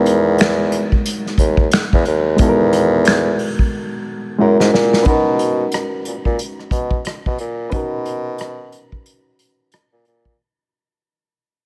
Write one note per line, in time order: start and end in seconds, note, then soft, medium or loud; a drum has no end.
0.00 0.88 E2 loud
0.00 2.33 G#3 medium
0.00 2.34 B3 medium
0.00 2.35 D#4 medium
0.00 2.36 F#4 medium
0.00 2.36 A#4 medium
0.06 closed hi-hat medium
0.38 finger snap medium
0.38 snare loud
0.38 closed hi-hat medium
0.72 closed hi-hat medium
0.92 kick medium
1.06 closed hi-hat medium
1.26 snare soft
1.38 1.68 D#2 medium
1.38 kick medium
1.38 closed hi-hat medium
1.57 kick medium
1.72 finger snap medium
1.72 snare loud
1.72 closed hi-hat medium
1.93 2.05 E2 loud
1.93 kick medium
2.05 2.36 D#2 medium
2.05 closed hi-hat soft
2.36 3.54 E2 loud
2.36 4.33 G#3 medium
2.36 4.34 B3 medium
2.36 4.35 D#4 medium
2.36 kick loud
2.36 closed hi-hat medium
2.41 4.36 F#4 medium
2.41 2.48 A4 medium
2.49 4.40 A#4 medium
2.73 closed hi-hat medium
3.05 finger snap medium
3.05 snare medium
3.05 closed hi-hat medium
3.39 open hi-hat soft
3.59 kick medium
4.38 4.57 F#2 medium
4.38 5.05 G#3 medium
4.38 5.03 C#4 medium
4.38 5.06 E4 medium
4.38 5.06 F#4 medium
4.38 5.07 A#4 medium
4.59 4.71 G#2 medium
4.59 snare medium
4.73 5.02 A#2 medium
4.73 snare medium
4.93 snare medium
5.03 5.65 B2 medium
5.03 7.68 C#4 medium
5.03 7.68 D#4 medium
5.03 7.67 B4 medium
5.03 kick loud
5.03 closed hi-hat medium
5.08 7.69 F#4 medium
5.08 7.70 A#4 medium
5.39 closed hi-hat medium
5.72 cross-stick medium
5.72 closed hi-hat medium
6.05 6.14 A#2 soft
6.05 closed hi-hat medium
6.25 6.38 A#2 medium
6.25 kick medium
6.39 closed hi-hat medium
6.59 cross-stick soft
6.71 7.01 B2 medium
6.71 kick medium
6.71 closed hi-hat medium
6.91 kick medium
7.05 cross-stick loud
7.05 closed hi-hat medium
7.26 7.38 B2 medium
7.26 kick medium
7.38 7.69 A#2 medium
7.38 closed hi-hat soft
7.70 8.88 B2 loud
7.70 10.34 C#4 medium
7.70 10.35 D#4 medium
7.70 10.34 B4 medium
7.70 kick loud
7.70 closed hi-hat medium
7.75 10.36 F#4 medium
7.75 10.37 A#4 medium
8.06 closed hi-hat medium
8.38 cross-stick medium
8.38 closed hi-hat medium
8.72 closed hi-hat medium
8.92 kick medium
9.06 closed hi-hat medium
9.39 closed hi-hat medium
9.72 cross-stick medium
9.72 closed hi-hat medium
9.92 10.04 A#2 medium
10.05 10.36 A#2 medium
10.05 closed hi-hat soft
10.25 kick medium